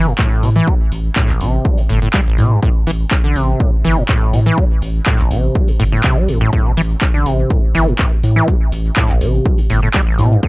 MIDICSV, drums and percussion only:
0, 0, Header, 1, 2, 480
1, 0, Start_track
1, 0, Key_signature, 0, "minor"
1, 0, Tempo, 487805
1, 664, Time_signature, 4, 2, 24, 8
1, 10314, End_track
2, 0, Start_track
2, 0, Title_t, "Drums"
2, 181, Note_on_c, 9, 39, 118
2, 184, Note_on_c, 9, 36, 114
2, 280, Note_off_c, 9, 39, 0
2, 283, Note_off_c, 9, 36, 0
2, 424, Note_on_c, 9, 46, 101
2, 523, Note_off_c, 9, 46, 0
2, 664, Note_on_c, 9, 36, 127
2, 763, Note_off_c, 9, 36, 0
2, 904, Note_on_c, 9, 46, 109
2, 1002, Note_off_c, 9, 46, 0
2, 1141, Note_on_c, 9, 39, 123
2, 1144, Note_on_c, 9, 36, 118
2, 1240, Note_off_c, 9, 39, 0
2, 1242, Note_off_c, 9, 36, 0
2, 1267, Note_on_c, 9, 39, 37
2, 1365, Note_off_c, 9, 39, 0
2, 1384, Note_on_c, 9, 46, 106
2, 1482, Note_off_c, 9, 46, 0
2, 1624, Note_on_c, 9, 36, 119
2, 1722, Note_off_c, 9, 36, 0
2, 1749, Note_on_c, 9, 46, 60
2, 1847, Note_off_c, 9, 46, 0
2, 1864, Note_on_c, 9, 46, 108
2, 1963, Note_off_c, 9, 46, 0
2, 2102, Note_on_c, 9, 39, 121
2, 2104, Note_on_c, 9, 36, 120
2, 2200, Note_off_c, 9, 39, 0
2, 2202, Note_off_c, 9, 36, 0
2, 2345, Note_on_c, 9, 46, 104
2, 2443, Note_off_c, 9, 46, 0
2, 2584, Note_on_c, 9, 36, 127
2, 2682, Note_off_c, 9, 36, 0
2, 2824, Note_on_c, 9, 46, 114
2, 2923, Note_off_c, 9, 46, 0
2, 3062, Note_on_c, 9, 39, 121
2, 3064, Note_on_c, 9, 36, 126
2, 3160, Note_off_c, 9, 39, 0
2, 3162, Note_off_c, 9, 36, 0
2, 3304, Note_on_c, 9, 46, 105
2, 3403, Note_off_c, 9, 46, 0
2, 3544, Note_on_c, 9, 36, 123
2, 3642, Note_off_c, 9, 36, 0
2, 3784, Note_on_c, 9, 46, 109
2, 3883, Note_off_c, 9, 46, 0
2, 4022, Note_on_c, 9, 39, 119
2, 4024, Note_on_c, 9, 36, 122
2, 4120, Note_off_c, 9, 39, 0
2, 4122, Note_off_c, 9, 36, 0
2, 4265, Note_on_c, 9, 46, 103
2, 4363, Note_off_c, 9, 46, 0
2, 4504, Note_on_c, 9, 36, 124
2, 4603, Note_off_c, 9, 36, 0
2, 4744, Note_on_c, 9, 46, 111
2, 4843, Note_off_c, 9, 46, 0
2, 4982, Note_on_c, 9, 39, 115
2, 4984, Note_on_c, 9, 36, 124
2, 5080, Note_off_c, 9, 39, 0
2, 5083, Note_off_c, 9, 36, 0
2, 5107, Note_on_c, 9, 39, 34
2, 5205, Note_off_c, 9, 39, 0
2, 5225, Note_on_c, 9, 46, 108
2, 5323, Note_off_c, 9, 46, 0
2, 5464, Note_on_c, 9, 36, 118
2, 5563, Note_off_c, 9, 36, 0
2, 5590, Note_on_c, 9, 46, 63
2, 5688, Note_off_c, 9, 46, 0
2, 5705, Note_on_c, 9, 46, 107
2, 5803, Note_off_c, 9, 46, 0
2, 5942, Note_on_c, 9, 39, 111
2, 5944, Note_on_c, 9, 36, 116
2, 6040, Note_off_c, 9, 39, 0
2, 6042, Note_off_c, 9, 36, 0
2, 6184, Note_on_c, 9, 46, 106
2, 6282, Note_off_c, 9, 46, 0
2, 6424, Note_on_c, 9, 36, 120
2, 6430, Note_on_c, 9, 82, 40
2, 6522, Note_off_c, 9, 36, 0
2, 6528, Note_off_c, 9, 82, 0
2, 6664, Note_on_c, 9, 46, 104
2, 6669, Note_on_c, 9, 82, 73
2, 6762, Note_off_c, 9, 46, 0
2, 6767, Note_off_c, 9, 82, 0
2, 6794, Note_on_c, 9, 82, 33
2, 6892, Note_off_c, 9, 82, 0
2, 6902, Note_on_c, 9, 39, 115
2, 6904, Note_on_c, 9, 36, 122
2, 6909, Note_on_c, 9, 82, 43
2, 7000, Note_off_c, 9, 39, 0
2, 7002, Note_off_c, 9, 36, 0
2, 7008, Note_off_c, 9, 82, 0
2, 7144, Note_on_c, 9, 46, 104
2, 7149, Note_on_c, 9, 82, 77
2, 7242, Note_off_c, 9, 46, 0
2, 7247, Note_off_c, 9, 82, 0
2, 7274, Note_on_c, 9, 82, 33
2, 7372, Note_off_c, 9, 82, 0
2, 7384, Note_on_c, 9, 36, 119
2, 7389, Note_on_c, 9, 82, 42
2, 7482, Note_off_c, 9, 36, 0
2, 7487, Note_off_c, 9, 82, 0
2, 7623, Note_on_c, 9, 46, 109
2, 7628, Note_on_c, 9, 82, 76
2, 7722, Note_off_c, 9, 46, 0
2, 7727, Note_off_c, 9, 82, 0
2, 7754, Note_on_c, 9, 82, 32
2, 7852, Note_off_c, 9, 82, 0
2, 7860, Note_on_c, 9, 39, 111
2, 7864, Note_on_c, 9, 36, 116
2, 7868, Note_on_c, 9, 82, 43
2, 7959, Note_off_c, 9, 39, 0
2, 7962, Note_off_c, 9, 36, 0
2, 7966, Note_off_c, 9, 82, 0
2, 8103, Note_on_c, 9, 46, 103
2, 8108, Note_on_c, 9, 82, 73
2, 8201, Note_off_c, 9, 46, 0
2, 8207, Note_off_c, 9, 82, 0
2, 8233, Note_on_c, 9, 82, 32
2, 8331, Note_off_c, 9, 82, 0
2, 8344, Note_on_c, 9, 36, 117
2, 8348, Note_on_c, 9, 82, 45
2, 8442, Note_off_c, 9, 36, 0
2, 8446, Note_off_c, 9, 82, 0
2, 8583, Note_on_c, 9, 46, 103
2, 8588, Note_on_c, 9, 82, 78
2, 8682, Note_off_c, 9, 46, 0
2, 8687, Note_off_c, 9, 82, 0
2, 8713, Note_on_c, 9, 82, 34
2, 8812, Note_off_c, 9, 82, 0
2, 8821, Note_on_c, 9, 39, 119
2, 8824, Note_on_c, 9, 36, 112
2, 8828, Note_on_c, 9, 82, 46
2, 8919, Note_off_c, 9, 39, 0
2, 8922, Note_off_c, 9, 36, 0
2, 8927, Note_off_c, 9, 82, 0
2, 8946, Note_on_c, 9, 39, 34
2, 9044, Note_off_c, 9, 39, 0
2, 9064, Note_on_c, 9, 46, 102
2, 9069, Note_on_c, 9, 82, 76
2, 9162, Note_off_c, 9, 46, 0
2, 9167, Note_off_c, 9, 82, 0
2, 9194, Note_on_c, 9, 82, 34
2, 9292, Note_off_c, 9, 82, 0
2, 9304, Note_on_c, 9, 36, 115
2, 9308, Note_on_c, 9, 82, 44
2, 9402, Note_off_c, 9, 36, 0
2, 9406, Note_off_c, 9, 82, 0
2, 9428, Note_on_c, 9, 46, 57
2, 9527, Note_off_c, 9, 46, 0
2, 9544, Note_on_c, 9, 46, 105
2, 9549, Note_on_c, 9, 82, 78
2, 9642, Note_off_c, 9, 46, 0
2, 9647, Note_off_c, 9, 82, 0
2, 9674, Note_on_c, 9, 82, 34
2, 9772, Note_off_c, 9, 82, 0
2, 9781, Note_on_c, 9, 39, 115
2, 9784, Note_on_c, 9, 36, 114
2, 9789, Note_on_c, 9, 82, 43
2, 9880, Note_off_c, 9, 39, 0
2, 9882, Note_off_c, 9, 36, 0
2, 9887, Note_off_c, 9, 82, 0
2, 10023, Note_on_c, 9, 46, 101
2, 10028, Note_on_c, 9, 82, 75
2, 10122, Note_off_c, 9, 46, 0
2, 10127, Note_off_c, 9, 82, 0
2, 10154, Note_on_c, 9, 82, 34
2, 10252, Note_off_c, 9, 82, 0
2, 10264, Note_on_c, 9, 36, 117
2, 10269, Note_on_c, 9, 82, 46
2, 10314, Note_off_c, 9, 36, 0
2, 10314, Note_off_c, 9, 82, 0
2, 10314, End_track
0, 0, End_of_file